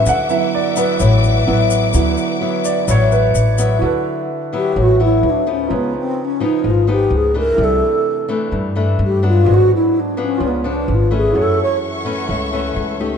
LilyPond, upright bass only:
\new Staff \with { instrumentName = "Upright bass" } { \clef bass \time 4/4 \key d \major \tempo 4 = 128 d,8 r4. a,,4 a,,4 | d,8 r4. a,,4 a,,4 | d,8 r4. a,,4 d,4 | cis,8 r4. gis,,4 cis,4 |
c,8 r4. g,4 g,4 | gis,,8 r4. cis,4 gis,,4 | fis,8 r4. cis,4 cis,4 | }